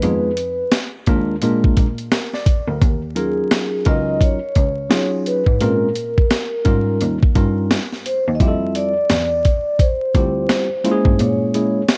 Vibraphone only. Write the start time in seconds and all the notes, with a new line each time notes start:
Already playing: B4
3.18 G#4
3.88 D#5
4.22 C#5
5.27 B4
5.62 A#4
8.06 C5
8.35 D#5
8.40 E5
8.76 D5
9.80 C5
11.20 C#5